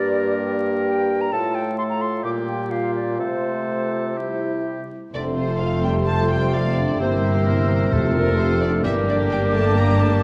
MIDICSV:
0, 0, Header, 1, 12, 480
1, 0, Start_track
1, 0, Key_signature, -1, "major"
1, 0, Tempo, 462250
1, 1374, Time_signature, 4, 2, 24, 8
1, 2819, Tempo, 482315
1, 5699, Tempo, 462963
1, 10492, End_track
2, 0, Start_track
2, 0, Title_t, "Flute"
2, 0, Program_c, 0, 73
2, 0, Note_on_c, 0, 74, 85
2, 642, Note_off_c, 0, 74, 0
2, 883, Note_on_c, 0, 79, 79
2, 1258, Note_on_c, 0, 82, 74
2, 1274, Note_off_c, 0, 79, 0
2, 1373, Note_on_c, 0, 81, 92
2, 1389, Note_off_c, 0, 82, 0
2, 1608, Note_on_c, 0, 79, 78
2, 1624, Note_off_c, 0, 81, 0
2, 1841, Note_off_c, 0, 79, 0
2, 1848, Note_on_c, 0, 84, 68
2, 1902, Note_off_c, 0, 84, 0
2, 1966, Note_on_c, 0, 82, 62
2, 2090, Note_on_c, 0, 84, 69
2, 2105, Note_off_c, 0, 82, 0
2, 2323, Note_off_c, 0, 84, 0
2, 2329, Note_on_c, 0, 86, 79
2, 2391, Note_off_c, 0, 86, 0
2, 2567, Note_on_c, 0, 79, 64
2, 2812, Note_on_c, 0, 77, 66
2, 2828, Note_off_c, 0, 79, 0
2, 3048, Note_off_c, 0, 77, 0
2, 3054, Note_on_c, 0, 74, 55
2, 3286, Note_off_c, 0, 74, 0
2, 3292, Note_on_c, 0, 72, 65
2, 4716, Note_off_c, 0, 72, 0
2, 5230, Note_on_c, 0, 84, 56
2, 7102, Note_off_c, 0, 84, 0
2, 7138, Note_on_c, 0, 88, 53
2, 8093, Note_on_c, 0, 89, 54
2, 8108, Note_off_c, 0, 88, 0
2, 9040, Note_off_c, 0, 89, 0
2, 9046, Note_on_c, 0, 86, 62
2, 10492, Note_off_c, 0, 86, 0
2, 10492, End_track
3, 0, Start_track
3, 0, Title_t, "Violin section"
3, 0, Program_c, 1, 48
3, 5233, Note_on_c, 1, 74, 69
3, 5313, Note_off_c, 1, 74, 0
3, 5464, Note_on_c, 1, 72, 56
3, 5681, Note_on_c, 1, 77, 66
3, 5694, Note_off_c, 1, 72, 0
3, 5934, Note_off_c, 1, 77, 0
3, 5942, Note_on_c, 1, 79, 68
3, 6025, Note_off_c, 1, 79, 0
3, 6171, Note_on_c, 1, 81, 76
3, 6413, Note_off_c, 1, 81, 0
3, 6424, Note_on_c, 1, 79, 70
3, 6649, Note_on_c, 1, 77, 73
3, 6659, Note_off_c, 1, 79, 0
3, 6896, Note_off_c, 1, 77, 0
3, 6905, Note_on_c, 1, 74, 65
3, 7144, Note_off_c, 1, 74, 0
3, 7149, Note_on_c, 1, 72, 62
3, 8337, Note_on_c, 1, 70, 76
3, 8347, Note_off_c, 1, 72, 0
3, 8572, Note_on_c, 1, 72, 81
3, 8575, Note_off_c, 1, 70, 0
3, 8815, Note_off_c, 1, 72, 0
3, 8819, Note_on_c, 1, 74, 69
3, 8902, Note_off_c, 1, 74, 0
3, 9059, Note_on_c, 1, 76, 88
3, 9142, Note_off_c, 1, 76, 0
3, 9309, Note_on_c, 1, 74, 61
3, 9392, Note_off_c, 1, 74, 0
3, 9542, Note_on_c, 1, 79, 80
3, 9625, Note_off_c, 1, 79, 0
3, 9776, Note_on_c, 1, 81, 79
3, 10013, Note_off_c, 1, 81, 0
3, 10020, Note_on_c, 1, 82, 90
3, 10240, Note_on_c, 1, 81, 83
3, 10260, Note_off_c, 1, 82, 0
3, 10491, Note_off_c, 1, 81, 0
3, 10492, End_track
4, 0, Start_track
4, 0, Title_t, "Oboe"
4, 0, Program_c, 2, 68
4, 0, Note_on_c, 2, 70, 61
4, 1336, Note_off_c, 2, 70, 0
4, 1376, Note_on_c, 2, 69, 54
4, 1818, Note_off_c, 2, 69, 0
4, 1856, Note_on_c, 2, 69, 46
4, 2322, Note_on_c, 2, 67, 51
4, 2338, Note_off_c, 2, 69, 0
4, 2807, Note_off_c, 2, 67, 0
4, 2813, Note_on_c, 2, 67, 45
4, 3288, Note_off_c, 2, 67, 0
4, 3303, Note_on_c, 2, 69, 49
4, 4273, Note_on_c, 2, 67, 43
4, 4287, Note_off_c, 2, 69, 0
4, 4993, Note_off_c, 2, 67, 0
4, 6183, Note_on_c, 2, 72, 61
4, 6630, Note_off_c, 2, 72, 0
4, 6663, Note_on_c, 2, 74, 61
4, 7133, Note_off_c, 2, 74, 0
4, 7148, Note_on_c, 2, 72, 59
4, 7615, Note_off_c, 2, 72, 0
4, 7621, Note_on_c, 2, 70, 57
4, 8096, Note_on_c, 2, 69, 66
4, 8112, Note_off_c, 2, 70, 0
4, 9035, Note_off_c, 2, 69, 0
4, 9041, Note_on_c, 2, 67, 76
4, 10492, Note_off_c, 2, 67, 0
4, 10492, End_track
5, 0, Start_track
5, 0, Title_t, "Clarinet"
5, 0, Program_c, 3, 71
5, 0, Note_on_c, 3, 67, 58
5, 1334, Note_off_c, 3, 67, 0
5, 1390, Note_on_c, 3, 65, 51
5, 1826, Note_off_c, 3, 65, 0
5, 1855, Note_on_c, 3, 65, 54
5, 2323, Note_off_c, 3, 65, 0
5, 2338, Note_on_c, 3, 65, 45
5, 2808, Note_off_c, 3, 65, 0
5, 2815, Note_on_c, 3, 65, 45
5, 3289, Note_off_c, 3, 65, 0
5, 3304, Note_on_c, 3, 65, 46
5, 4276, Note_on_c, 3, 64, 39
5, 4291, Note_off_c, 3, 65, 0
5, 4994, Note_off_c, 3, 64, 0
5, 5235, Note_on_c, 3, 69, 45
5, 7105, Note_off_c, 3, 69, 0
5, 7156, Note_on_c, 3, 70, 51
5, 8102, Note_on_c, 3, 69, 47
5, 8118, Note_off_c, 3, 70, 0
5, 9053, Note_on_c, 3, 70, 55
5, 9068, Note_off_c, 3, 69, 0
5, 10492, Note_off_c, 3, 70, 0
5, 10492, End_track
6, 0, Start_track
6, 0, Title_t, "Viola section"
6, 0, Program_c, 4, 48
6, 5224, Note_on_c, 4, 57, 54
6, 5224, Note_on_c, 4, 65, 53
6, 7099, Note_off_c, 4, 57, 0
6, 7099, Note_off_c, 4, 65, 0
6, 7147, Note_on_c, 4, 58, 51
6, 7150, Note_on_c, 4, 64, 49
6, 8088, Note_off_c, 4, 64, 0
6, 8105, Note_off_c, 4, 58, 0
6, 8106, Note_on_c, 4, 57, 53
6, 8107, Note_on_c, 4, 65, 56
6, 9059, Note_off_c, 4, 57, 0
6, 9060, Note_off_c, 4, 65, 0
6, 9067, Note_on_c, 4, 62, 59
6, 9069, Note_on_c, 4, 58, 62
6, 10492, Note_off_c, 4, 58, 0
6, 10492, Note_off_c, 4, 62, 0
6, 10492, End_track
7, 0, Start_track
7, 0, Title_t, "Violin section"
7, 0, Program_c, 5, 48
7, 5230, Note_on_c, 5, 72, 49
7, 5231, Note_on_c, 5, 57, 46
7, 5336, Note_on_c, 5, 60, 42
7, 5339, Note_off_c, 5, 57, 0
7, 5459, Note_off_c, 5, 60, 0
7, 5464, Note_on_c, 5, 65, 42
7, 5578, Note_on_c, 5, 69, 37
7, 5582, Note_off_c, 5, 65, 0
7, 5698, Note_off_c, 5, 69, 0
7, 5702, Note_on_c, 5, 65, 41
7, 5823, Note_off_c, 5, 65, 0
7, 5825, Note_on_c, 5, 60, 41
7, 5944, Note_on_c, 5, 57, 47
7, 5945, Note_off_c, 5, 60, 0
7, 6065, Note_off_c, 5, 57, 0
7, 6072, Note_on_c, 5, 60, 44
7, 6174, Note_on_c, 5, 65, 43
7, 6188, Note_off_c, 5, 60, 0
7, 6290, Note_off_c, 5, 65, 0
7, 6303, Note_on_c, 5, 69, 49
7, 6421, Note_on_c, 5, 65, 43
7, 6424, Note_off_c, 5, 69, 0
7, 6543, Note_off_c, 5, 65, 0
7, 6547, Note_on_c, 5, 60, 45
7, 6661, Note_on_c, 5, 57, 45
7, 6665, Note_off_c, 5, 60, 0
7, 6782, Note_off_c, 5, 57, 0
7, 6789, Note_on_c, 5, 60, 47
7, 6905, Note_on_c, 5, 65, 42
7, 6906, Note_off_c, 5, 60, 0
7, 7023, Note_on_c, 5, 69, 40
7, 7024, Note_off_c, 5, 65, 0
7, 7142, Note_on_c, 5, 58, 52
7, 7143, Note_off_c, 5, 69, 0
7, 7254, Note_off_c, 5, 58, 0
7, 7262, Note_on_c, 5, 60, 41
7, 7382, Note_off_c, 5, 60, 0
7, 7388, Note_on_c, 5, 64, 47
7, 7502, Note_on_c, 5, 67, 42
7, 7505, Note_off_c, 5, 64, 0
7, 7622, Note_off_c, 5, 67, 0
7, 7627, Note_on_c, 5, 64, 47
7, 7745, Note_off_c, 5, 64, 0
7, 7750, Note_on_c, 5, 60, 43
7, 7866, Note_off_c, 5, 60, 0
7, 7871, Note_on_c, 5, 58, 49
7, 7987, Note_off_c, 5, 58, 0
7, 8000, Note_on_c, 5, 60, 50
7, 8112, Note_off_c, 5, 60, 0
7, 8116, Note_on_c, 5, 57, 51
7, 8222, Note_off_c, 5, 57, 0
7, 8233, Note_on_c, 5, 60, 47
7, 8349, Note_off_c, 5, 60, 0
7, 8354, Note_on_c, 5, 65, 48
7, 8468, Note_off_c, 5, 65, 0
7, 8470, Note_on_c, 5, 69, 48
7, 8586, Note_off_c, 5, 69, 0
7, 8599, Note_on_c, 5, 65, 52
7, 8710, Note_off_c, 5, 65, 0
7, 8712, Note_on_c, 5, 60, 51
7, 8825, Note_off_c, 5, 60, 0
7, 8829, Note_on_c, 5, 57, 50
7, 8943, Note_off_c, 5, 57, 0
7, 8954, Note_on_c, 5, 60, 45
7, 9017, Note_off_c, 5, 72, 0
7, 9065, Note_off_c, 5, 60, 0
7, 9066, Note_on_c, 5, 55, 53
7, 9073, Note_on_c, 5, 70, 60
7, 9173, Note_off_c, 5, 55, 0
7, 9178, Note_on_c, 5, 58, 45
7, 9297, Note_off_c, 5, 58, 0
7, 9300, Note_on_c, 5, 62, 52
7, 9411, Note_on_c, 5, 67, 48
7, 9418, Note_off_c, 5, 62, 0
7, 9526, Note_on_c, 5, 62, 51
7, 9534, Note_off_c, 5, 67, 0
7, 9646, Note_on_c, 5, 58, 54
7, 9652, Note_off_c, 5, 62, 0
7, 9759, Note_on_c, 5, 55, 58
7, 9772, Note_off_c, 5, 58, 0
7, 9883, Note_on_c, 5, 58, 57
7, 9888, Note_off_c, 5, 55, 0
7, 10006, Note_on_c, 5, 62, 52
7, 10011, Note_off_c, 5, 58, 0
7, 10123, Note_off_c, 5, 62, 0
7, 10140, Note_on_c, 5, 67, 55
7, 10260, Note_off_c, 5, 67, 0
7, 10261, Note_on_c, 5, 62, 59
7, 10370, Note_on_c, 5, 58, 55
7, 10381, Note_off_c, 5, 62, 0
7, 10492, Note_off_c, 5, 58, 0
7, 10492, Note_off_c, 5, 70, 0
7, 10492, End_track
8, 0, Start_track
8, 0, Title_t, "French horn section"
8, 0, Program_c, 6, 60
8, 0, Note_on_c, 6, 58, 70
8, 0, Note_on_c, 6, 67, 68
8, 1332, Note_off_c, 6, 67, 0
8, 1333, Note_off_c, 6, 58, 0
8, 1379, Note_on_c, 6, 57, 58
8, 1379, Note_on_c, 6, 65, 65
8, 2291, Note_off_c, 6, 57, 0
8, 2325, Note_on_c, 6, 55, 56
8, 3258, Note_off_c, 6, 55, 0
8, 3300, Note_on_c, 6, 57, 48
8, 4228, Note_off_c, 6, 57, 0
8, 4231, Note_off_c, 6, 65, 0
8, 4256, Note_on_c, 6, 64, 42
8, 4260, Note_on_c, 6, 55, 43
8, 4945, Note_off_c, 6, 64, 0
8, 4947, Note_off_c, 6, 55, 0
8, 5234, Note_on_c, 6, 50, 66
8, 5450, Note_off_c, 6, 50, 0
8, 5461, Note_on_c, 6, 48, 44
8, 5567, Note_off_c, 6, 48, 0
8, 5697, Note_on_c, 6, 53, 61
8, 5937, Note_off_c, 6, 53, 0
8, 5945, Note_on_c, 6, 55, 58
8, 6186, Note_off_c, 6, 55, 0
8, 6190, Note_on_c, 6, 57, 64
8, 6423, Note_on_c, 6, 55, 55
8, 6427, Note_off_c, 6, 57, 0
8, 6659, Note_off_c, 6, 55, 0
8, 6670, Note_on_c, 6, 53, 59
8, 6906, Note_off_c, 6, 53, 0
8, 6912, Note_on_c, 6, 50, 58
8, 7147, Note_off_c, 6, 50, 0
8, 7151, Note_on_c, 6, 48, 52
8, 8347, Note_on_c, 6, 46, 58
8, 8348, Note_off_c, 6, 48, 0
8, 8584, Note_off_c, 6, 46, 0
8, 8587, Note_on_c, 6, 48, 62
8, 8817, Note_off_c, 6, 48, 0
8, 8818, Note_on_c, 6, 50, 61
8, 9054, Note_on_c, 6, 52, 73
8, 9056, Note_off_c, 6, 50, 0
8, 9286, Note_on_c, 6, 50, 57
8, 9294, Note_off_c, 6, 52, 0
8, 9527, Note_off_c, 6, 50, 0
8, 9537, Note_on_c, 6, 55, 67
8, 9773, Note_on_c, 6, 57, 72
8, 9778, Note_off_c, 6, 55, 0
8, 10009, Note_on_c, 6, 58, 70
8, 10016, Note_off_c, 6, 57, 0
8, 10120, Note_off_c, 6, 58, 0
8, 10248, Note_on_c, 6, 57, 68
8, 10359, Note_off_c, 6, 57, 0
8, 10492, End_track
9, 0, Start_track
9, 0, Title_t, "Bassoon"
9, 0, Program_c, 7, 70
9, 0, Note_on_c, 7, 43, 77
9, 1330, Note_off_c, 7, 43, 0
9, 1379, Note_on_c, 7, 45, 65
9, 2328, Note_on_c, 7, 46, 51
9, 2344, Note_off_c, 7, 45, 0
9, 3302, Note_on_c, 7, 48, 53
9, 3317, Note_off_c, 7, 46, 0
9, 4991, Note_off_c, 7, 48, 0
9, 5235, Note_on_c, 7, 48, 51
9, 9047, Note_on_c, 7, 55, 66
9, 9063, Note_off_c, 7, 48, 0
9, 10492, Note_off_c, 7, 55, 0
9, 10492, End_track
10, 0, Start_track
10, 0, Title_t, "Cello section"
10, 0, Program_c, 8, 48
10, 5228, Note_on_c, 8, 41, 52
10, 7101, Note_off_c, 8, 41, 0
10, 7149, Note_on_c, 8, 43, 52
10, 8087, Note_off_c, 8, 43, 0
10, 8101, Note_on_c, 8, 41, 54
10, 9037, Note_off_c, 8, 41, 0
10, 9049, Note_on_c, 8, 43, 60
10, 10492, Note_off_c, 8, 43, 0
10, 10492, End_track
11, 0, Start_track
11, 0, Title_t, "Timpani"
11, 0, Program_c, 10, 47
11, 8103, Note_on_c, 10, 41, 66
11, 8779, Note_off_c, 10, 41, 0
11, 10492, End_track
12, 0, Start_track
12, 0, Title_t, "Double bass section"
12, 0, Program_c, 11, 48
12, 5234, Note_on_c, 11, 29, 51
12, 7104, Note_off_c, 11, 29, 0
12, 7135, Note_on_c, 11, 31, 53
12, 8080, Note_off_c, 11, 31, 0
12, 8106, Note_on_c, 11, 29, 55
12, 9040, Note_off_c, 11, 29, 0
12, 9053, Note_on_c, 11, 31, 54
12, 10492, Note_off_c, 11, 31, 0
12, 10492, End_track
0, 0, End_of_file